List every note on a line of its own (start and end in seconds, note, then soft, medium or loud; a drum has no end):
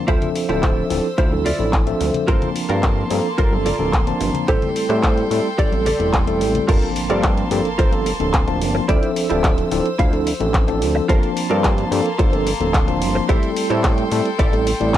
0.07 0.18 D2 medium
0.07 0.46 F3 medium
0.07 0.46 C4 medium
0.07 0.46 D4 medium
0.07 0.29 E4 loud
0.07 0.29 F4 loud
0.07 0.46 A4 medium
0.07 2.26 C5 medium
0.07 0.29 C5 loud
0.07 0.46 E5 medium
0.07 2.26 E6 medium
0.07 kick loud
0.07 closed hi-hat medium
0.22 closed hi-hat soft
0.22 low conga medium
0.35 open hi-hat medium
0.48 0.84 D1 loud
0.48 0.87 F3 medium
0.48 0.87 C4 medium
0.48 0.87 D4 medium
0.48 0.84 E4 medium
0.48 0.84 F4 medium
0.48 0.87 A4 loud
0.48 0.84 C5 medium
0.48 0.87 E5 medium
0.48 closed hi-hat soft
0.63 kick loud
0.63 clap loud
0.63 closed hi-hat medium
0.89 1.00 D1 loud
0.89 1.06 F3 medium
0.89 1.06 C4 medium
0.89 1.06 D4 medium
0.89 1.07 E4 medium
0.89 1.07 A4 loud
0.89 open hi-hat loud
1.18 1.53 D2 medium
1.18 1.32 E4 medium
1.18 1.32 F4 medium
1.18 1.32 C5 medium
1.18 kick loud
1.18 closed hi-hat medium
1.31 1.48 F3 medium
1.31 1.48 C4 medium
1.31 1.48 D4 medium
1.31 1.48 E4 medium
1.31 1.48 A4 loud
1.31 high conga medium
1.45 1.73 E4 medium
1.45 1.73 F4 medium
1.45 1.73 D5 medium
1.45 open hi-hat loud
1.45 low conga medium
1.59 1.94 A1 medium
1.59 1.83 F3 medium
1.59 1.84 C4 medium
1.59 1.84 D4 medium
1.59 1.84 E4 medium
1.59 1.84 A4 medium
1.73 kick loud
1.73 clap loud
1.73 closed hi-hat medium
1.86 2.25 F3 medium
1.86 2.25 C4 medium
1.86 2.25 D4 medium
1.86 2.25 A4 loud
1.86 2.25 E5 medium
1.86 closed hi-hat soft
2.00 2.10 D2 loud
2.00 muted clean electric guitar stroke soft
2.00 open hi-hat loud
2.00 high conga medium
2.14 closed hi-hat medium
2.14 low conga medium
2.27 2.38 G1 loud
2.27 2.66 F3 medium
2.27 2.66 A#3 medium
2.27 4.46 A#3 medium
2.27 2.66 C4 medium
2.27 2.66 D4 medium
2.27 2.49 F4 loud
2.27 2.49 A4 medium
2.27 2.49 A#4 loud
2.27 2.49 C5 loud
2.27 4.46 A5 medium
2.27 2.66 A5 medium
2.27 6.64 C6 medium
2.27 kick loud
2.27 closed hi-hat medium
2.42 closed hi-hat soft
2.42 low conga medium
2.56 open hi-hat medium
2.69 3.04 G2 loud
2.69 3.07 F3 medium
2.69 3.08 A#3 medium
2.69 3.08 C4 medium
2.69 3.08 D4 medium
2.69 3.04 F4 medium
2.69 3.04 A4 medium
2.69 3.04 A#4 medium
2.69 3.04 C5 medium
2.69 3.08 A5 medium
2.69 closed hi-hat soft
2.83 kick loud
2.83 clap loud
2.83 closed hi-hat medium
3.10 3.20 G2 loud
3.10 3.27 F3 medium
3.10 3.27 A#3 medium
3.10 3.27 C4 medium
3.10 3.27 D4 medium
3.10 3.27 A4 medium
3.10 open hi-hat loud
3.38 3.73 G1 medium
3.38 3.52 F4 medium
3.38 3.52 A4 medium
3.38 3.52 A#4 medium
3.38 3.52 C5 medium
3.38 kick loud
3.38 closed hi-hat medium
3.51 3.68 F3 medium
3.51 3.68 A#3 medium
3.51 3.68 C4 medium
3.51 3.68 D4 medium
3.51 3.68 A4 loud
3.51 high conga medium
3.65 3.93 F4 medium
3.65 3.93 A4 medium
3.65 3.93 A#4 medium
3.65 3.94 D5 medium
3.65 open hi-hat medium
3.65 low conga medium
3.79 4.14 D1 medium
3.79 4.04 F3 medium
3.79 4.04 A#3 medium
3.79 4.04 C4 medium
3.79 4.04 D4 medium
3.79 4.04 A4 medium
3.93 kick loud
3.93 clap loud
3.93 closed hi-hat medium
4.07 4.45 F3 medium
4.07 4.45 A#3 medium
4.07 4.45 C4 medium
4.07 4.46 D4 medium
4.07 4.46 A5 loud
4.07 closed hi-hat medium
4.21 4.30 G1 loud
4.21 muted clean electric guitar stroke soft
4.21 open hi-hat loud
4.21 high conga medium
4.34 closed hi-hat medium
4.34 low conga medium
4.48 4.58 A1 medium
4.48 4.86 G3 medium
4.48 4.87 A3 medium
4.48 4.87 C4 medium
4.48 4.87 E4 medium
4.48 4.69 G4 loud
4.48 6.67 A4 medium
4.48 4.69 A4 medium
4.48 4.87 A4 medium
4.48 4.69 C5 loud
4.48 6.67 G5 medium
4.48 kick loud
4.48 closed hi-hat medium
4.62 closed hi-hat soft
4.62 low conga medium
4.76 open hi-hat medium
4.89 5.24 A2 loud
4.89 5.28 G3 medium
4.89 5.28 A3 medium
4.89 5.28 C4 medium
4.89 5.28 E4 medium
4.89 5.24 G4 medium
4.89 5.24 A4 medium
4.89 5.28 A4 loud
4.89 5.24 C5 loud
4.89 cross-stick medium
4.89 closed hi-hat soft
5.03 kick loud
5.03 clap loud
5.03 closed hi-hat medium
5.18 closed hi-hat soft
5.31 5.40 A2 loud
5.31 5.47 G3 medium
5.31 5.47 A3 medium
5.31 5.47 C4 medium
5.31 5.47 E4 medium
5.31 5.47 A4 medium
5.31 open hi-hat medium
5.58 5.93 A1 medium
5.58 5.72 G4 medium
5.58 5.72 A4 medium
5.58 5.73 D5 medium
5.58 kick loud
5.58 closed hi-hat medium
5.58 swell medium
5.71 5.88 G3 medium
5.71 5.88 A3 medium
5.71 5.88 C4 medium
5.71 5.89 E4 medium
5.71 5.89 A4 loud
5.71 closed hi-hat soft
5.71 high conga medium
5.86 6.14 G4 medium
5.86 6.14 A4 medium
5.86 6.14 D5 medium
5.86 open hi-hat loud
5.86 low conga medium
5.99 6.42 E1 medium
5.99 6.24 G3 medium
5.99 6.24 A3 medium
5.99 6.24 C4 medium
5.99 6.24 E4 medium
5.99 6.24 A4 medium
5.99 closed hi-hat soft
6.14 kick loud
6.14 clap loud
6.14 closed hi-hat medium
6.27 6.65 G3 medium
6.27 6.65 A3 medium
6.27 6.65 C4 medium
6.27 6.66 E4 medium
6.27 6.66 A4 loud
6.27 closed hi-hat medium
6.41 6.60 A1 loud
6.41 muted clean electric guitar stroke soft
6.41 open hi-hat loud
6.41 high conga medium
6.55 closed hi-hat medium
6.55 low conga medium
6.68 6.78 G1 loud
6.68 7.06 F3 medium
6.68 7.07 A#3 medium
6.68 8.87 A#3 medium
6.68 7.07 C4 medium
6.68 7.07 D4 medium
6.68 6.89 F4 loud
6.68 6.89 A4 medium
6.68 6.89 A#4 loud
6.68 6.90 C5 loud
6.68 8.87 A5 medium
6.68 7.07 A5 loud
6.68 8.87 C6 medium
6.68 kick loud
6.68 closed hi-hat loud
6.68 crash loud
6.68 impact medium
6.82 closed hi-hat soft
6.96 open hi-hat loud
7.09 7.44 G2 loud
7.09 7.48 F3 medium
7.09 7.48 A#3 medium
7.09 7.48 C4 medium
7.09 7.48 D4 medium
7.09 7.31 F4 medium
7.09 7.31 A4 medium
7.09 7.31 A#4 medium
7.09 7.31 D5 medium
7.09 7.48 A5 loud
7.09 closed hi-hat soft
7.23 kick loud
7.23 cross-stick medium
7.23 clap loud
7.23 closed hi-hat loud
7.37 closed hi-hat soft
7.51 7.61 G2 loud
7.51 7.67 F3 medium
7.51 7.67 A#3 medium
7.51 7.67 C4 medium
7.51 7.67 D4 medium
7.51 7.67 A4 loud
7.51 muted clean electric guitar stroke soft
7.51 open hi-hat loud
7.65 closed hi-hat soft
7.78 8.13 G1 medium
7.78 7.92 F4 medium
7.78 7.92 A4 medium
7.78 7.93 A#4 medium
7.78 7.93 C5 loud
7.78 kick loud
7.78 closed hi-hat medium
7.92 8.08 F3 medium
7.92 8.08 A#3 medium
7.92 8.09 C4 medium
7.92 8.09 D4 medium
7.92 8.09 A4 loud
7.92 closed hi-hat soft
8.06 muted clean electric guitar stroke soft
8.06 open hi-hat loud
8.20 8.63 D1 medium
8.20 8.44 F3 medium
8.20 8.44 A#3 medium
8.20 8.44 C4 medium
8.20 8.44 D4 medium
8.20 8.45 A4 medium
8.20 closed hi-hat soft
8.34 kick loud
8.34 clap loud
8.34 closed hi-hat loud
8.47 8.85 F3 medium
8.47 8.85 A#3 medium
8.47 8.85 C4 medium
8.47 8.86 D4 medium
8.47 8.86 A5 loud
8.47 muted clean electric guitar stroke soft
8.47 closed hi-hat soft
8.61 8.80 G1 loud
8.61 open hi-hat loud
8.75 muted clean electric guitar stroke medium
8.88 8.98 D2 loud
8.88 9.27 F3 medium
8.88 9.27 C4 medium
8.88 9.27 D4 medium
8.88 9.09 E4 loud
8.88 9.09 F4 loud
8.88 9.27 A4 loud
8.88 9.10 C5 loud
8.88 11.07 C5 medium
8.88 9.10 D5 loud
8.88 9.27 E5 medium
8.88 11.07 E6 medium
8.88 kick loud
8.88 closed hi-hat loud
9.03 closed hi-hat soft
9.16 open hi-hat loud
9.30 9.65 D1 loud
9.30 9.68 F3 medium
9.30 9.68 C4 medium
9.30 9.68 D4 medium
9.30 9.51 E4 medium
9.30 9.51 F4 medium
9.30 9.69 A4 loud
9.30 9.51 C5 medium
9.30 9.51 D5 medium
9.30 9.68 E5 medium
9.30 closed hi-hat soft
9.44 kick loud
9.44 cross-stick medium
9.44 clap loud
9.44 closed hi-hat medium
9.58 closed hi-hat soft
9.71 9.81 D1 loud
9.71 9.87 F3 medium
9.71 9.87 C4 medium
9.71 9.88 D4 medium
9.71 9.88 E4 medium
9.71 9.88 A4 loud
9.71 muted clean electric guitar stroke soft
9.71 open hi-hat loud
9.86 closed hi-hat soft
9.99 10.34 D2 medium
9.99 10.13 E4 medium
9.99 10.13 F4 medium
9.99 10.13 C5 medium
9.99 10.13 F5 loud
9.99 kick loud
9.99 closed hi-hat medium
10.12 10.29 F3 medium
10.12 10.29 C4 medium
10.12 10.29 D4 medium
10.12 10.29 E4 medium
10.12 10.29 A4 loud
10.12 closed hi-hat soft
10.27 muted clean electric guitar stroke soft
10.27 open hi-hat loud
10.40 10.83 A1 medium
10.40 10.64 F3 medium
10.40 10.64 C4 medium
10.40 10.65 D4 medium
10.40 10.65 E4 medium
10.40 10.65 A4 medium
10.40 closed hi-hat soft
10.54 kick loud
10.54 clap loud
10.54 closed hi-hat medium
10.67 11.06 F3 medium
10.67 11.06 C4 medium
10.67 11.06 D4 medium
10.67 11.06 A4 loud
10.67 muted clean electric guitar stroke soft
10.67 closed hi-hat soft
10.82 11.01 D2 loud
10.82 open hi-hat loud
10.95 muted clean electric guitar stroke medium
11.08 11.19 G1 medium
11.08 11.47 F3 medium
11.08 11.47 A#3 medium
11.08 13.28 A#3 medium
11.08 11.47 C4 medium
11.08 11.47 D4 medium
11.08 11.30 F4 loud
11.08 11.30 A4 loud
11.08 11.30 A#4 loud
11.08 11.30 C5 loud
11.08 11.47 A5 medium
11.08 13.27 A5 medium
11.08 14.98 C6 medium
11.08 kick loud
11.08 closed hi-hat medium
11.23 closed hi-hat soft
11.37 open hi-hat loud
11.49 11.85 G2 loud
11.49 11.88 F3 medium
11.49 11.88 A#3 medium
11.49 11.88 C4 medium
11.49 11.88 D4 medium
11.49 11.71 F4 medium
11.49 11.71 A4 medium
11.49 11.71 A#4 medium
11.49 11.71 D5 medium
11.49 11.88 A5 loud
11.49 closed hi-hat soft
11.64 kick loud
11.64 cross-stick medium
11.64 clap loud
11.64 closed hi-hat medium
11.78 closed hi-hat soft
11.91 12.01 G2 loud
11.91 12.07 F3 medium
11.91 12.08 A#3 medium
11.91 12.08 C4 medium
11.91 12.08 D4 medium
11.91 12.08 A4 loud
11.91 muted clean electric guitar stroke soft
11.91 open hi-hat loud
12.06 closed hi-hat soft
12.19 12.54 G1 medium
12.19 12.33 F4 medium
12.19 12.33 A4 medium
12.19 12.33 A#4 medium
12.19 12.33 C5 medium
12.19 kick loud
12.19 closed hi-hat medium
12.32 12.49 F3 medium
12.32 12.49 A#3 medium
12.32 12.49 C4 medium
12.32 12.49 D4 medium
12.32 12.49 A4 loud
12.32 closed hi-hat soft
12.46 muted clean electric guitar stroke soft
12.46 open hi-hat loud
12.60 13.03 D1 medium
12.60 12.85 F3 medium
12.60 12.85 A#3 medium
12.60 12.85 C4 medium
12.60 12.85 D4 medium
12.60 12.85 A4 medium
12.60 closed hi-hat soft
12.74 kick loud
12.74 clap loud
12.74 closed hi-hat medium
12.87 13.26 F3 medium
12.87 13.26 A#3 medium
12.87 13.26 C4 medium
12.87 13.26 D4 medium
12.87 13.26 A5 loud
12.87 muted clean electric guitar stroke soft
12.87 closed hi-hat soft
13.02 13.21 G1 loud
13.02 open hi-hat loud
13.15 muted clean electric guitar stroke medium
13.28 13.39 A1 medium
13.28 13.67 G3 medium
13.28 13.67 A3 medium
13.28 13.67 C4 medium
13.28 13.50 E4 loud
13.28 13.67 E4 medium
13.28 13.50 G4 loud
13.28 14.98 A4 medium
13.28 13.50 A4 loud
13.28 13.67 A4 loud
13.28 13.50 C5 loud
13.28 14.98 G5 medium
13.28 kick loud
13.28 closed hi-hat medium
13.43 closed hi-hat soft
13.56 open hi-hat loud
13.70 14.05 A2 loud
13.70 14.08 G3 medium
13.70 14.08 A3 medium
13.70 14.08 C4 medium
13.70 13.91 E4 medium
13.70 14.08 E4 medium
13.70 13.91 G4 medium
13.70 13.91 A4 medium
13.70 14.09 A4 loud
13.70 13.91 C5 medium
13.70 closed hi-hat soft
13.84 kick loud
13.84 cross-stick medium
13.84 clap loud
13.84 closed hi-hat medium
13.98 closed hi-hat soft
14.11 14.21 A2 loud
14.11 14.28 G3 medium
14.11 14.28 A3 medium
14.11 14.28 C4 medium
14.11 14.28 E4 medium
14.11 14.28 A4 loud
14.11 muted clean electric guitar stroke soft
14.11 open hi-hat loud
14.25 closed hi-hat soft
14.39 14.74 A1 medium
14.39 14.53 E4 medium
14.39 14.53 G4 medium
14.39 14.53 A4 medium
14.39 14.53 D5 loud
14.39 kick loud
14.39 closed hi-hat medium
14.53 14.69 G3 medium
14.53 14.69 A3 medium
14.53 14.69 C4 medium
14.53 14.69 E4 medium
14.53 14.69 A4 loud
14.53 closed hi-hat soft
14.66 muted clean electric guitar stroke soft
14.66 open hi-hat loud
14.80 14.98 A1 medium
14.80 14.98 G3 medium
14.80 14.98 A3 medium
14.80 14.98 C4 medium
14.80 14.98 E4 medium
14.80 14.98 D5 medium
14.80 closed hi-hat soft
14.94 kick loud
14.94 clap loud
14.94 closed hi-hat medium